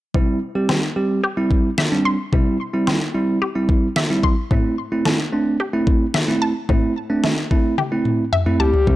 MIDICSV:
0, 0, Header, 1, 6, 480
1, 0, Start_track
1, 0, Key_signature, 0, "major"
1, 0, Tempo, 545455
1, 127, Time_signature, 4, 2, 24, 8
1, 7884, End_track
2, 0, Start_track
2, 0, Title_t, "Analog synth lead"
2, 0, Program_c, 0, 81
2, 7567, Note_on_c, 0, 67, 97
2, 7884, Note_off_c, 0, 67, 0
2, 7884, End_track
3, 0, Start_track
3, 0, Title_t, "Synth arpeggio sound"
3, 0, Program_c, 1, 84
3, 127, Note_on_c, 1, 48, 90
3, 352, Note_off_c, 1, 48, 0
3, 607, Note_on_c, 1, 60, 84
3, 832, Note_off_c, 1, 60, 0
3, 1087, Note_on_c, 1, 67, 92
3, 1312, Note_off_c, 1, 67, 0
3, 1567, Note_on_c, 1, 76, 93
3, 1792, Note_off_c, 1, 76, 0
3, 1807, Note_on_c, 1, 84, 92
3, 2032, Note_off_c, 1, 84, 0
3, 2047, Note_on_c, 1, 48, 88
3, 2272, Note_off_c, 1, 48, 0
3, 2527, Note_on_c, 1, 60, 81
3, 2752, Note_off_c, 1, 60, 0
3, 3007, Note_on_c, 1, 67, 97
3, 3232, Note_off_c, 1, 67, 0
3, 3488, Note_on_c, 1, 76, 95
3, 3713, Note_off_c, 1, 76, 0
3, 3728, Note_on_c, 1, 84, 89
3, 3953, Note_off_c, 1, 84, 0
3, 3967, Note_on_c, 1, 45, 86
3, 4193, Note_off_c, 1, 45, 0
3, 4447, Note_on_c, 1, 57, 84
3, 4673, Note_off_c, 1, 57, 0
3, 4927, Note_on_c, 1, 67, 96
3, 5153, Note_off_c, 1, 67, 0
3, 5407, Note_on_c, 1, 76, 93
3, 5633, Note_off_c, 1, 76, 0
3, 5647, Note_on_c, 1, 81, 92
3, 5873, Note_off_c, 1, 81, 0
3, 5887, Note_on_c, 1, 45, 88
3, 6112, Note_off_c, 1, 45, 0
3, 6367, Note_on_c, 1, 57, 85
3, 6592, Note_off_c, 1, 57, 0
3, 6847, Note_on_c, 1, 67, 95
3, 7072, Note_off_c, 1, 67, 0
3, 7327, Note_on_c, 1, 76, 95
3, 7553, Note_off_c, 1, 76, 0
3, 7567, Note_on_c, 1, 81, 90
3, 7792, Note_off_c, 1, 81, 0
3, 7884, End_track
4, 0, Start_track
4, 0, Title_t, "Tine electric piano"
4, 0, Program_c, 2, 4
4, 127, Note_on_c, 2, 55, 76
4, 127, Note_on_c, 2, 60, 74
4, 127, Note_on_c, 2, 64, 88
4, 336, Note_off_c, 2, 55, 0
4, 336, Note_off_c, 2, 60, 0
4, 336, Note_off_c, 2, 64, 0
4, 487, Note_on_c, 2, 55, 78
4, 487, Note_on_c, 2, 60, 70
4, 487, Note_on_c, 2, 67, 83
4, 696, Note_off_c, 2, 55, 0
4, 696, Note_off_c, 2, 60, 0
4, 696, Note_off_c, 2, 67, 0
4, 847, Note_on_c, 2, 55, 80
4, 847, Note_on_c, 2, 60, 72
4, 847, Note_on_c, 2, 67, 89
4, 1056, Note_off_c, 2, 55, 0
4, 1056, Note_off_c, 2, 60, 0
4, 1056, Note_off_c, 2, 67, 0
4, 1207, Note_on_c, 2, 55, 75
4, 1207, Note_on_c, 2, 60, 69
4, 1207, Note_on_c, 2, 64, 86
4, 1486, Note_off_c, 2, 55, 0
4, 1486, Note_off_c, 2, 60, 0
4, 1486, Note_off_c, 2, 64, 0
4, 1687, Note_on_c, 2, 55, 78
4, 1687, Note_on_c, 2, 60, 72
4, 1687, Note_on_c, 2, 62, 87
4, 1896, Note_off_c, 2, 55, 0
4, 1896, Note_off_c, 2, 60, 0
4, 1896, Note_off_c, 2, 62, 0
4, 2047, Note_on_c, 2, 55, 81
4, 2047, Note_on_c, 2, 60, 72
4, 2047, Note_on_c, 2, 64, 88
4, 2256, Note_off_c, 2, 55, 0
4, 2256, Note_off_c, 2, 60, 0
4, 2256, Note_off_c, 2, 64, 0
4, 2407, Note_on_c, 2, 55, 78
4, 2407, Note_on_c, 2, 60, 74
4, 2407, Note_on_c, 2, 64, 87
4, 2616, Note_off_c, 2, 55, 0
4, 2616, Note_off_c, 2, 60, 0
4, 2616, Note_off_c, 2, 64, 0
4, 2767, Note_on_c, 2, 55, 83
4, 2767, Note_on_c, 2, 60, 74
4, 2767, Note_on_c, 2, 64, 89
4, 2976, Note_off_c, 2, 55, 0
4, 2976, Note_off_c, 2, 60, 0
4, 2976, Note_off_c, 2, 64, 0
4, 3127, Note_on_c, 2, 55, 77
4, 3127, Note_on_c, 2, 60, 71
4, 3127, Note_on_c, 2, 64, 85
4, 3406, Note_off_c, 2, 55, 0
4, 3406, Note_off_c, 2, 60, 0
4, 3406, Note_off_c, 2, 64, 0
4, 3608, Note_on_c, 2, 55, 81
4, 3608, Note_on_c, 2, 60, 73
4, 3608, Note_on_c, 2, 64, 89
4, 3817, Note_off_c, 2, 55, 0
4, 3817, Note_off_c, 2, 60, 0
4, 3817, Note_off_c, 2, 64, 0
4, 3968, Note_on_c, 2, 57, 81
4, 3968, Note_on_c, 2, 60, 77
4, 3968, Note_on_c, 2, 64, 87
4, 4177, Note_off_c, 2, 57, 0
4, 4177, Note_off_c, 2, 60, 0
4, 4177, Note_off_c, 2, 64, 0
4, 4328, Note_on_c, 2, 57, 79
4, 4328, Note_on_c, 2, 60, 73
4, 4328, Note_on_c, 2, 64, 86
4, 4537, Note_off_c, 2, 57, 0
4, 4537, Note_off_c, 2, 60, 0
4, 4537, Note_off_c, 2, 64, 0
4, 4687, Note_on_c, 2, 57, 81
4, 4687, Note_on_c, 2, 60, 76
4, 4687, Note_on_c, 2, 62, 89
4, 4896, Note_off_c, 2, 57, 0
4, 4896, Note_off_c, 2, 60, 0
4, 4896, Note_off_c, 2, 62, 0
4, 5047, Note_on_c, 2, 57, 81
4, 5047, Note_on_c, 2, 60, 72
4, 5047, Note_on_c, 2, 64, 86
4, 5326, Note_off_c, 2, 57, 0
4, 5326, Note_off_c, 2, 60, 0
4, 5326, Note_off_c, 2, 64, 0
4, 5528, Note_on_c, 2, 57, 80
4, 5528, Note_on_c, 2, 60, 73
4, 5528, Note_on_c, 2, 64, 87
4, 5736, Note_off_c, 2, 57, 0
4, 5736, Note_off_c, 2, 64, 0
4, 5737, Note_off_c, 2, 60, 0
4, 5887, Note_on_c, 2, 57, 80
4, 5887, Note_on_c, 2, 60, 74
4, 5887, Note_on_c, 2, 64, 91
4, 6096, Note_off_c, 2, 57, 0
4, 6096, Note_off_c, 2, 60, 0
4, 6096, Note_off_c, 2, 64, 0
4, 6247, Note_on_c, 2, 57, 82
4, 6247, Note_on_c, 2, 60, 74
4, 6247, Note_on_c, 2, 62, 87
4, 6456, Note_off_c, 2, 57, 0
4, 6456, Note_off_c, 2, 60, 0
4, 6456, Note_off_c, 2, 62, 0
4, 6607, Note_on_c, 2, 57, 80
4, 6607, Note_on_c, 2, 60, 75
4, 6607, Note_on_c, 2, 64, 89
4, 6816, Note_off_c, 2, 57, 0
4, 6816, Note_off_c, 2, 60, 0
4, 6816, Note_off_c, 2, 64, 0
4, 6968, Note_on_c, 2, 57, 77
4, 6968, Note_on_c, 2, 60, 72
4, 6968, Note_on_c, 2, 64, 85
4, 7246, Note_off_c, 2, 57, 0
4, 7246, Note_off_c, 2, 60, 0
4, 7246, Note_off_c, 2, 64, 0
4, 7447, Note_on_c, 2, 60, 74
4, 7448, Note_on_c, 2, 57, 81
4, 7448, Note_on_c, 2, 64, 90
4, 7656, Note_off_c, 2, 57, 0
4, 7656, Note_off_c, 2, 60, 0
4, 7656, Note_off_c, 2, 64, 0
4, 7808, Note_on_c, 2, 55, 70
4, 7808, Note_on_c, 2, 60, 66
4, 7808, Note_on_c, 2, 64, 80
4, 7884, Note_off_c, 2, 55, 0
4, 7884, Note_off_c, 2, 60, 0
4, 7884, Note_off_c, 2, 64, 0
4, 7884, End_track
5, 0, Start_track
5, 0, Title_t, "Analog synth bass"
5, 0, Program_c, 3, 38
5, 7807, Note_on_c, 3, 36, 99
5, 7884, Note_off_c, 3, 36, 0
5, 7884, End_track
6, 0, Start_track
6, 0, Title_t, "Drums"
6, 127, Note_on_c, 9, 36, 114
6, 215, Note_off_c, 9, 36, 0
6, 608, Note_on_c, 9, 38, 94
6, 696, Note_off_c, 9, 38, 0
6, 1326, Note_on_c, 9, 36, 89
6, 1414, Note_off_c, 9, 36, 0
6, 1565, Note_on_c, 9, 38, 104
6, 1653, Note_off_c, 9, 38, 0
6, 2047, Note_on_c, 9, 36, 108
6, 2135, Note_off_c, 9, 36, 0
6, 2528, Note_on_c, 9, 38, 95
6, 2616, Note_off_c, 9, 38, 0
6, 3246, Note_on_c, 9, 36, 91
6, 3334, Note_off_c, 9, 36, 0
6, 3485, Note_on_c, 9, 38, 102
6, 3573, Note_off_c, 9, 38, 0
6, 3726, Note_on_c, 9, 36, 89
6, 3814, Note_off_c, 9, 36, 0
6, 3967, Note_on_c, 9, 36, 108
6, 4055, Note_off_c, 9, 36, 0
6, 4448, Note_on_c, 9, 38, 99
6, 4536, Note_off_c, 9, 38, 0
6, 5166, Note_on_c, 9, 36, 88
6, 5254, Note_off_c, 9, 36, 0
6, 5405, Note_on_c, 9, 38, 106
6, 5493, Note_off_c, 9, 38, 0
6, 5887, Note_on_c, 9, 36, 113
6, 5975, Note_off_c, 9, 36, 0
6, 6368, Note_on_c, 9, 38, 95
6, 6456, Note_off_c, 9, 38, 0
6, 6609, Note_on_c, 9, 36, 78
6, 6697, Note_off_c, 9, 36, 0
6, 6846, Note_on_c, 9, 48, 51
6, 6934, Note_off_c, 9, 48, 0
6, 7087, Note_on_c, 9, 47, 64
6, 7175, Note_off_c, 9, 47, 0
6, 7327, Note_on_c, 9, 45, 76
6, 7415, Note_off_c, 9, 45, 0
6, 7447, Note_on_c, 9, 45, 66
6, 7535, Note_off_c, 9, 45, 0
6, 7567, Note_on_c, 9, 43, 82
6, 7655, Note_off_c, 9, 43, 0
6, 7687, Note_on_c, 9, 43, 79
6, 7775, Note_off_c, 9, 43, 0
6, 7807, Note_on_c, 9, 36, 110
6, 7884, Note_off_c, 9, 36, 0
6, 7884, End_track
0, 0, End_of_file